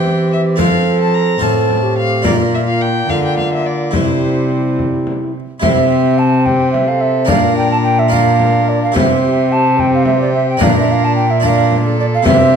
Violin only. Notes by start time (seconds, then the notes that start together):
Already playing: G5
0.33 E5
0.60 F5
1.01 A5
1.14 A#5
1.43 A5
1.98 F5
2.26 D5
2.54 E5
2.67 F5
2.81 G5
3.09 F5
3.25 G5
3.38 F5
3.53 E5
3.66 D5
3.94 C5
5.62 G4
6.45 G4
6.87 A4
7.28 A#4
8.13 A#4
8.95 G4
9.78 G4
10.61 A#4
11.43 A#4
11.84 A4
12.26 G4